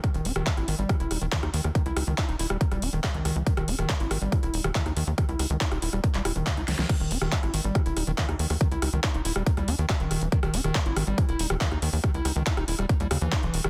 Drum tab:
CC |----------------|----------------|----------------|----------------|
HH |xxoxxxoxxxoxxxox|xxoxxxoxxxoxxxox|xxoxxxoxxxoxxxox|xxoxxxoxxxoxxxo-|
CP |----x-------x---|----x-------x---|----x-------x---|----x----x--x---|
SD |r--r-r--r-r--r-r|--r-r--r-r--r-r-|-r-r--r-r--r-r--|r-r--r-r--r-r-oo|
BD |o---o---o---o---|o---o---o---o---|o---o---o---o---|o---o---o---o---|

CC |x---------------|----------------|----------------|----------------|
HH |xxoxxxo-xxoxxxoo|xxoxxxoxxxoxxxox|xxoxxxoxxxo-xxoo|xxoxxxoxxxoxxxox|
CP |----x-------x---|----x-------x---|----x-------x---|----x-------x---|
SD |r--r-r--r-r--r-r|--r-r--r-r--r-r-|-r-r--r-r--r-r--|r-r--r-r--r-r--r|
BD |o---o---o---o---|o---o---o---o---|o---o---o---o---|o---o---o---o---|